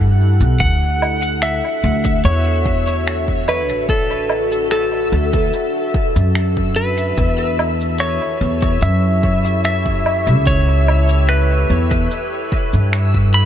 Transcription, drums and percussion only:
0.41 cabasa
0.60 kick, cabasa
1.02 low woodblock
1.22 cabasa
1.42 finger snap, cabasa
2.05 kick, cabasa
2.25 cabasa
2.66 kick
2.87 cabasa
3.07 finger snap, cabasa
3.28 kick
3.48 low woodblock
3.69 cabasa
3.89 kick, cabasa
4.29 low woodblock
4.52 cabasa
4.71 finger snap, cabasa
5.33 kick, cabasa
5.53 cabasa
5.94 kick
6.16 cabasa
6.35 finger snap, cabasa
6.57 kick
6.98 cabasa
7.18 kick, cabasa
7.59 low woodblock
7.80 cabasa
8.00 finger snap, cabasa
8.62 kick, cabasa
8.82 cabasa
9.23 kick
9.45 cabasa
9.65 finger snap, cabasa
9.86 kick
10.06 low woodblock
10.27 cabasa
10.47 kick, cabasa
10.88 low woodblock
11.09 cabasa
11.29 finger snap, cabasa
11.91 kick, cabasa
12.11 cabasa
12.52 kick
12.73 cabasa
12.93 finger snap, cabasa
13.14 kick

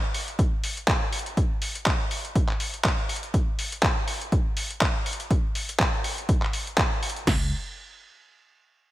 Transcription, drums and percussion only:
0.14 open hi-hat
0.28 closed hi-hat
0.39 kick, closed hi-hat
0.64 open hi-hat
0.77 closed hi-hat
0.88 kick, clap, closed hi-hat
1.13 open hi-hat
1.19 closed hi-hat
1.26 closed hi-hat
1.37 kick, closed hi-hat
1.62 open hi-hat
1.75 closed hi-hat
1.86 kick, clap, closed hi-hat
2.11 open hi-hat
2.25 closed hi-hat
2.35 kick, closed hi-hat
2.49 clap
2.60 open hi-hat
2.74 closed hi-hat
2.84 kick, clap, closed hi-hat
3.09 open hi-hat
3.16 closed hi-hat
3.23 closed hi-hat
3.34 kick, closed hi-hat
3.59 open hi-hat
3.72 closed hi-hat
3.83 kick, clap, closed hi-hat
4.08 open hi-hat
4.21 closed hi-hat
4.32 kick, closed hi-hat
4.57 open hi-hat
4.71 closed hi-hat
4.81 kick, clap, closed hi-hat
5.06 open hi-hat
5.13 closed hi-hat
5.20 closed hi-hat
5.31 kick, closed hi-hat
5.55 open hi-hat
5.69 closed hi-hat
5.79 kick, clap, closed hi-hat
6.04 open hi-hat
6.18 closed hi-hat
6.29 kick, closed hi-hat
6.42 clap
6.53 open hi-hat
6.67 closed hi-hat
6.77 kick, clap, closed hi-hat
7.03 open hi-hat
7.10 closed hi-hat
7.16 closed hi-hat
7.27 kick, snare, crash

